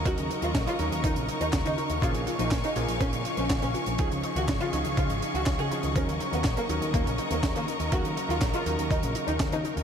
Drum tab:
HH |xxxxxxxxxxxxxxxx|xxxxxxxxxxxxxxxx|xxxxxxxxxxxxxxxx|xxxxxxxxxxxxxxxx|
CP |----x-------x---|----x-------x---|----x-------x---|----x-------x---|
SD |----o-------o---|----o-------o---|----o-------o---|----o-------o---|
BD |o---o---o---o---|o---o---o---o---|o---o---o---o---|o---o---o---o---|

HH |xxxxxxxxxxxxxxxx|
CP |----x-------x---|
SD |----o-------o---|
BD |o---o---o---o---|